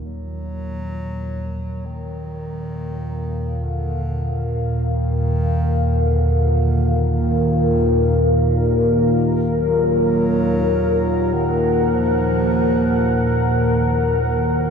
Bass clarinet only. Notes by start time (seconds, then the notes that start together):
0.03 F#3
1.86 D#3
3.64 D3
4.84 D#3
6.01 D3
7.21 D#3
9.56 F#3
11.33 D#3
11.94 F3
14.31 D#3